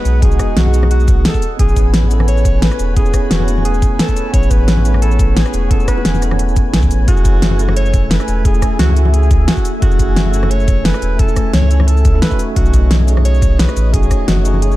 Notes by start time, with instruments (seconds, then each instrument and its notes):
Already playing: tine electric piano G#3 B3 D#4 F#4 G#4, ambient pad G#4 D#5 F#5, alto saxophone B4
0.05 sub bass B1, closed hi-hat, shaker
0.20 tine electric piano G#3 B3 D#4, alto saxophone G#4, kick, closed hi-hat
0.25 tine electric piano F#4
0.31 high bongo, shaker
0.39 kick, cross-stick, closed hi-hat, shaker
0.57 sub bass B1, alto saxophone F#4, snare, closed hi-hat
0.66 high conga
0.71 tine electric piano G#3 B3 D#4, closed hi-hat, shaker
0.76 tine electric piano G#4
0.83 cross-stick, high bongo, high conga
0.91 alto saxophone F#4, closed hi-hat
1.00 shaker
1.08 kick, closed hi-hat, shaker
1.25 alto saxophone A4, snare, closed hi-hat
1.34 kick, shaker
1.42 ambient pad B4 C#5 G#5, closed hi-hat, shaker
1.57 sub bass A1, tine electric piano B3 C#4 E4, alto saxophone G#4, kick, closed hi-hat
1.62 tine electric piano G#4
1.69 shaker
1.76 kick, closed hi-hat, shaker
1.94 snare, closed hi-hat
2.03 high conga
2.08 tine electric piano B3 C#4 E4, closed hi-hat, shaker
2.13 tine electric piano A4
2.20 cross-stick, high bongo, high conga
2.28 alto saxophone C#5, closed hi-hat
2.37 shaker
2.45 kick, closed hi-hat, shaker
2.62 alto saxophone B4, snare, closed hi-hat
2.71 cross-stick, high bongo, shaker
2.79 sub bass E1, closed hi-hat, shaker
2.94 tine electric piano B3 C#4 E4, alto saxophone G#4, kick, closed hi-hat
2.99 tine electric piano G#4
3.06 high bongo, shaker
3.14 kick, cross-stick, closed hi-hat, shaker
3.24 alto saxophone G#4
3.31 sub bass E1, alto saxophone F#4, snare, closed hi-hat
3.40 high conga
3.45 tine electric piano B3 C#4 E4, closed hi-hat, shaker
3.50 tine electric piano A3
3.57 high bongo, high conga
3.65 alto saxophone G#4, closed hi-hat
3.74 shaker
3.82 kick, closed hi-hat, shaker
3.99 alto saxophone A4, snare, closed hi-hat
4.09 kick, shaker
4.17 closed hi-hat, shaker
4.31 sub bass A1, tine electric piano B3 C#4 E4, alto saxophone C#5, kick, closed hi-hat
4.36 tine electric piano G#4
4.43 shaker
4.51 alto saxophone B4, kick, closed hi-hat, shaker
4.68 snare, closed hi-hat
4.77 high conga
4.83 tine electric piano B3 C#4 E4, closed hi-hat, shaker
4.88 tine electric piano A3
4.94 cross-stick, high bongo, high conga
5.02 alto saxophone A4, closed hi-hat
5.11 shaker
5.19 kick, closed hi-hat, shaker
5.37 alto saxophone G#4, snare, closed hi-hat
5.46 cross-stick, high bongo, shaker
5.54 sub bass E1, closed hi-hat, shaker
5.68 tine electric piano B3 C#4 E4, alto saxophone A4, kick, closed hi-hat
5.73 tine electric piano G#4
5.80 high bongo, shaker
5.88 alto saxophone B4, kick, cross-stick, closed hi-hat, shaker
5.98 high bongo
6.05 sub bass E1, snare, closed hi-hat
6.14 high conga, shaker
6.20 tine electric piano B3 C#4 E4, cross-stick, closed hi-hat, shaker
6.25 tine electric piano A4
6.31 cross-stick, high bongo, high conga
6.39 closed hi-hat
6.49 shaker
6.56 kick, closed hi-hat, shaker
6.74 sub bass C#2, snare, closed hi-hat
6.83 kick, high conga, shaker
6.91 sub bass A1, closed hi-hat, shaker
7.05 sub bass F#1, tine electric piano A3 C#4 E4, ambient pad A3 E5, alto saxophone F#4, kick, closed hi-hat
7.10 tine electric piano G#4
7.17 shaker
7.25 kick, closed hi-hat, shaker
7.42 snare, closed hi-hat
7.51 high conga
7.57 tine electric piano A3 C#4 E4, closed hi-hat, shaker
7.62 tine electric piano A4
7.68 cross-stick, high bongo, high conga
7.77 alto saxophone C#5, closed hi-hat
7.86 shaker
7.94 kick, closed hi-hat, shaker
8.11 alto saxophone B4, snare, closed hi-hat
8.20 cross-stick, high bongo, shaker
8.28 sub bass E1, closed hi-hat, shaker
8.42 tine electric piano A3 C#4 E4, alto saxophone G#4, kick, closed hi-hat
8.47 tine electric piano G#4
8.54 high bongo, shaker
8.62 kick, cross-stick, closed hi-hat, shaker
8.79 sub bass C#2, alto saxophone F#4, snare, closed hi-hat
8.89 high conga
8.94 tine electric piano A3 C#4 E4, closed hi-hat, shaker
8.99 tine electric piano F#4
9.05 high bongo, high conga
9.14 alto saxophone G#4, closed hi-hat
9.23 shaker
9.31 kick, closed hi-hat, shaker
9.48 alto saxophone F#4, snare, closed hi-hat
9.57 kick, shaker
9.65 closed hi-hat, shaker
9.80 sub bass F#1, tine electric piano A3 C#4 E4, alto saxophone F#4, kick, closed hi-hat
9.85 tine electric piano G#4
9.91 shaker
9.99 kick, closed hi-hat, shaker
10.16 snare, closed hi-hat
10.26 high conga
10.31 tine electric piano A3 C#4 E4, closed hi-hat, shaker
10.36 tine electric piano A4
10.43 cross-stick, high bongo, high conga
10.51 alto saxophone C#5, closed hi-hat
10.60 shaker
10.68 kick, closed hi-hat, shaker
10.85 alto saxophone B4, snare, closed hi-hat
10.94 cross-stick, high bongo, shaker
11.02 sub bass E1, closed hi-hat, shaker
11.17 tine electric piano A3 C#4 E4, alto saxophone A4, kick, closed hi-hat
11.22 tine electric piano G#5
11.28 high bongo, shaker
11.36 kick, cross-stick, closed hi-hat, shaker
11.54 sub bass C#2, alto saxophone C#5, snare, closed hi-hat
11.62 high conga
11.68 tine electric piano A3 C#4 E4, closed hi-hat, shaker
11.73 tine electric piano A4
11.80 cross-stick, high bongo, high conga
11.88 alto saxophone A4, closed hi-hat
11.97 shaker
12.05 kick, closed hi-hat, shaker
12.13 tine electric piano A3 C#4 E4 A4
12.22 alto saxophone B4, snare, closed hi-hat
12.30 tine electric piano A3 C#4 D#4 F#4, kick, shaker
12.39 ambient pad C#5 D#5, closed hi-hat, shaker
12.54 sub bass B1, tine electric piano A3 C#4 D#4, alto saxophone F#4, kick, closed hi-hat
12.59 tine electric piano F#4
12.66 shaker
12.74 kick, closed hi-hat, shaker
12.91 snare, closed hi-hat
13.00 high conga
13.05 tine electric piano A3 C#4 D#4, closed hi-hat, shaker
13.10 tine electric piano G#4
13.17 cross-stick, high bongo, high conga
13.25 alto saxophone C#5, closed hi-hat
13.34 shaker
13.42 kick, closed hi-hat, shaker
13.59 alto saxophone B4, snare, closed hi-hat
13.69 cross-stick, high bongo, shaker
13.77 sub bass A1, closed hi-hat, shaker
13.91 tine electric piano A3 C#4 D#4, alto saxophone G#4, kick, closed hi-hat
13.96 tine electric piano F#4
14.03 high bongo, shaker
14.11 kick, cross-stick, closed hi-hat, shaker
14.28 sub bass F#1, alto saxophone F#4, snare, closed hi-hat
14.37 high conga
14.43 tine electric piano A3 C#4 D#4, closed hi-hat, shaker
14.48 tine electric piano G#4
14.54 high bongo, high conga
14.62 alto saxophone G#4, closed hi-hat
14.72 shaker